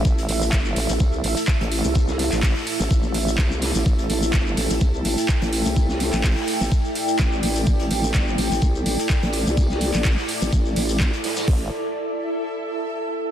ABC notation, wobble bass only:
X:1
M:4/4
L:1/16
Q:"Swing 16ths" 1/4=126
K:Am
V:1 name="Wobble bass" clef=bass
A,,,2 A,,,2 G,,,2 A,,, A,,, C,,2 A,,, z2 A,,,2 C,,- | C,,3 A,,,2 z2 A,,, A,,,4 C,,3 A,,, | A,,,2 A,,,2 G,,,2 A,,, A,,, C,,2 A,,, z2 A,,,2 C,,- | C,,3 A,,,2 z2 A,,, z4 A,,,2 A,,,2 |
A,,,2 A,,,2 G,,,2 A,,, A,,, C,,2 A,,, z2 A,,,2 C,,- | C,,3 A,,,2 z2 A,,, A,,,2 A,,,3 z3 | A,,,2 z12 z2 |]